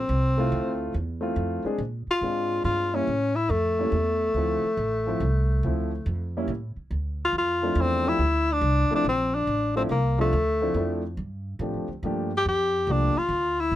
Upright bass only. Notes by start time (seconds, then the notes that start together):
0.09 C2
0.52 D2
0.94 E2
1.36 F2
1.64 muted upright bass stroke
1.78 A#2
2.07 muted upright bass stroke
2.21 G#2
2.64 G2
3.07 A2
3.50 F2
3.92 E2
4.34 D2
4.63 muted upright bass stroke
4.77 A1
5.20 C2
5.63 D2
6.06 F2
6.48 A2
6.76 muted upright bass stroke
6.91 D2
7.33 F2
7.75 E2
8.19 D2
8.61 C2
8.90 muted upright bass stroke
9.04 A#1
9.47 A1
9.89 C2
10.33 D2
10.74 F2
11.17 G2
11.59 A2
11.74 F2
11.88 D2
12.03 G2
12.45 F2
12.87 C2
13.16 muted upright bass stroke
13.29 D2
13.72 G1